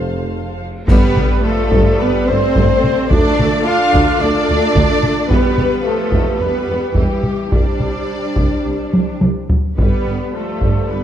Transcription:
Already playing: F1 F2 C4 C5 F5 A5
0.88 G1 G2 G3 B3 G4 B4 D5, concert bass drum, taiko, crash
1.16 G1 G2, taiko mid
1.43 F3 A3 A4
1.72 G1 G2, taiko
1.99 G1 G2 G3 B3 B4
2.26 G1 G2 A3 C4 C5
2.56 G1 G2, taiko
2.84 taiko mid
3.09 D2 D3 A3 D4 F4 A4 D5, taiko
3.38 D2, taiko mid
3.64 D4 F4 F5
3.93 D2, taiko
4.20 D2 A3 D4 D5
4.49 D2
4.75 D2, taiko
5.03 taiko mid
5.27 E1 E2 G3 B3 G4 B4
5.31 taiko
5.57 E1 E2, taiko mid
5.84 F3 A3 A4
6.12 E1 E2, taiko
6.38 E1 E2 G3 B3 B4
6.67 E1 E2
6.95 E1 E2 E3 G3 G4, taiko
7.23 taiko mid
7.51 C2 G3 D4 C5 D5, taiko
7.80 C2, taiko mid
8.36 C2, taiko
8.65 C2
8.93 C2, taiko high
9.21 C2, taiko high
9.50 taiko low
9.77 G1 G2 G3 B3 G4 B4 D5, taiko
10.05 G1 G2
10.33 F3 A3 A4
10.61 G1 G2, taiko
10.89 G1 G2 G3 B3 B4

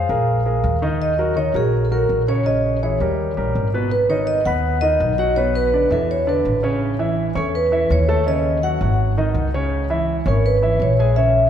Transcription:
Already playing: F5
0.09 A#1 G#3 G#4 A#4
0.45 G#3 G#4 A#4
0.64 D#2
0.82 D#3 D#4 D#5
1.02 D#5
1.18 F#3 F#4 A#4
1.36 D#3 D#4 C#5 D#5
1.54 A#1 F#3 F#4 G#4 A#4
1.85 A4
1.91 F#3 F#4 A#4
2.09 A#1
2.28 C#3 C#4 C#5
2.46 C#3 C#4 C#5 D#5
2.83 E3 E4 G#4 C#5
3.00 D#2 G3 G4 A#4
3.37 A#1 G3 G4 A#4
3.55 G#1
3.74 B2 B3 B4
3.92 B4
4.10 D#3 D#4 C#5 D#5
4.27 D#5
4.45 D#2 B3 B4 F#5 B5
4.81 D#3 D#4 D#5
5.00 B1
5.18 F#3 F#4 D#5 F#5
5.36 B2 B3 B4 C#5
5.55 B4
5.73 D3 D4 D5
5.90 E2 E3 E4 A4 E5
6.11 C#5
6.27 D3 D4 B4 D5
6.45 A1
6.63 C#3 C#4 C#5
6.99 E3 E4 E5
7.35 E2 C#4 A4 C#5 C#6
7.55 B4
7.72 E3 E4 E5
7.90 D#2 C#5
8.08 A3 A4 A5
8.26 C#3 C#4 C#5 D#5
8.63 F#3 F#4 F#5
8.81 G#1 F#3 F#4 F#5
9.17 D#3 D#4 D#5
9.34 C#2
9.54 C#3 C#4 C#5
9.90 E3 E4 E5
10.26 G#1 C#4 A#4 C#5 C#6
10.46 B4
10.62 E3 E4 E5
10.80 A#1 C#5
10.99 G#3 G#4 G#5
11.16 C#3 C#4 C#5 E5

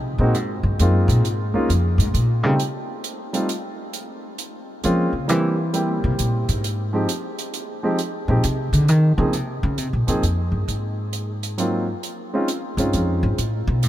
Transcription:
Already playing: C3
0.18 A#2 G#3 A#3 C4 D#4 F#4
0.34 G#2, closed hi-hat
0.63 G2
0.79 F#2 G#3 A#3 C4 D#4 F4, closed hi-hat
1.08 A#2, closed hi-hat
1.24 G#2, closed hi-hat
1.53 C#2 G#3 A#3 C#4 D#4 F4
1.69 F2, closed hi-hat
1.98 G#2, closed hi-hat
2.14 A#2, closed hi-hat
2.43 C#3 G3 A3 C4 D#4 G4
2.59 closed hi-hat
3.04 closed hi-hat
3.33 G3 A3 C4 D#4 F4, closed hi-hat
3.49 closed hi-hat
3.93 closed hi-hat
4.38 closed hi-hat
4.83 F3 G#3 A#3 C4 C#4 F4, closed hi-hat
5.13 C#3
5.28 E3 G3 A#3 C4 E4 G4, closed hi-hat
5.73 G3 A#3 C4 E4 G4, closed hi-hat
6.04 C3
6.19 A#2, closed hi-hat
6.49 G#2, closed hi-hat
6.64 closed hi-hat
6.93 F3 G#3 C4 D#4 G4
7.09 closed hi-hat
7.38 closed hi-hat
7.54 closed hi-hat
7.83 F3 G#3 C4 D#4 G4
7.98 closed hi-hat
8.28 A#2 F3 G#3 C4 D#4 G4
8.44 C3, closed hi-hat
8.73 D3, closed hi-hat
8.88 D#3, closed hi-hat
9.17 C#3 F3 A#3 C4 D#4 G#4
9.33 C3, closed hi-hat
9.63 C#3
9.78 C3, closed hi-hat
9.93 A#2
10.07 G2 F3 A#3 C4 D#4 G#4, closed hi-hat
10.23 F2, closed hi-hat
10.52 G2
10.68 G#2, closed hi-hat
11.13 closed hi-hat
11.43 closed hi-hat
11.58 F#3 A#3 C4 D#4 F4, closed hi-hat
12.03 closed hi-hat
12.33 G#3 C4 C#4 D#4 F4
12.48 closed hi-hat
12.77 G2 G#3 C4 C#4 D#4 F4, closed hi-hat
12.93 F2, closed hi-hat
13.23 G#2
13.38 A2, closed hi-hat
13.67 B2
13.83 A2, closed hi-hat

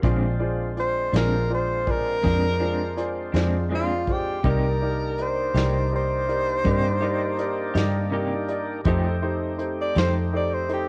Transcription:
0.02 A#1 A#2 G#3 C4 D4 F4 G#4 C5 D5, kick, closed hi-hat
0.39 F4 G#4 C5 D5
0.77 F4 G#4 C5 D5, closed hi-hat
1.12 A#1 G#3 C4 D4 F4 G#4 C5 D5, snare, closed hi-hat
1.17 A#4
1.50 F4 G#4 C5 D5
1.54 C5
1.86 F4 G#4 A#4 C5 D5, kick, closed hi-hat
2.22 F2 A#2 G#3 C4 D4 F4 G#4 C5 D5, kick, snare, closed hi-hat
2.59 G#3 C4 D4 F4 G#4 C5 D5
2.97 F4 G#4 C5 D5, closed hi-hat
3.32 F2 G#3 C4 D4 F4 G#4 C5 D5, snare, closed hi-hat
3.69 A#2 G#3 C4 D4 F4 G#4 C5 D5
3.75 F4
4.07 F4 G#4 C5 D5, kick, closed hi-hat
4.12 G4
4.43 C2 C3 A#3 D4 D#4 G4 A#4 D5, kick, closed hi-hat
4.49 A#4
4.82 D#4 G4 A#4 D5
5.18 D#4 G4 A#4 D5, closed hi-hat
5.22 C5
5.54 C2 A#3 D#4 G4 A#4 D5, snare, closed hi-hat
5.92 D#4 G4 A#4 C5 D5
6.28 D#4 G4 A#4 D5, closed hi-hat
6.64 G2 C3 A#3 D#4 G4 A#4 D5, kick, closed hi-hat
7.01 A#3 D#4 G4 A#4 D5
7.38 D#4 G4 A#4 D5, closed hi-hat
7.74 G2 A#3 D#4 G4 A#4 D5, snare, closed hi-hat
8.10 C3 A#3 D#4 G4 A#4 D5
8.48 D#4 G4 A#4 D5, closed hi-hat
8.84 F2 F3 A3 C4 D#4 G4 A4 C5, kick, closed hi-hat
9.22 D#4 G4 A4 C5
9.58 D#4 G4 A4 C5, closed hi-hat
9.81 D5
9.95 F2 A3 D#4 G4 A4 C5, snare, closed hi-hat
10.33 D#4 G4 A4 C5 D5
10.54 C5
10.69 D#4 G4 A4 C5, closed hi-hat
10.73 G4

